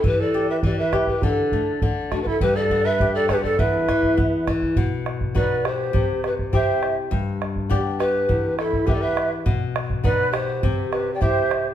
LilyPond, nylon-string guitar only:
\new Staff \with { instrumentName = "Nylon-string guitar" } { \time 2/4 \key e \minor \tempo 4 = 102 e8 g'8 e8 g'8 | d8 a8 d8 a8 | g,8 b8 g'8 b8 | e,8 e8 b8 e8 |
b,4 <b dis' fis'>4 | c4 <c' e' g'>4 | g,4 <b d' g'>4 | e,4 <b e' g'>4 |
b,4 <b dis' fis'>4 | c4 <c' e' g'>4 | }